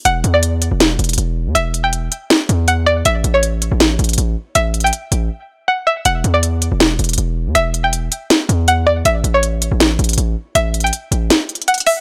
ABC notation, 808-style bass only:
X:1
M:4/4
L:1/16
Q:1/4=160
K:Edor
V:1 name="808-style bass" clef=bass
E,,,2 E,,4- E,, E,,,3 E,,,2 E,,,3 E,, | E,,,6 z4 E,,6 | A,,,2 A,,,4- A,,, A,,,3 A,,,2 A,,,2 z2 | A,,,4 z2 A,,,2 z8 |
E,,,2 E,,4- E,, E,,,3 E,,,2 E,,,3 E,, | E,,,6 z4 E,,6 | A,,,2 A,,,4- A,,, A,,,3 A,,,2 A,,,2 z2 | A,,,4 z2 A,,,2 z8 |]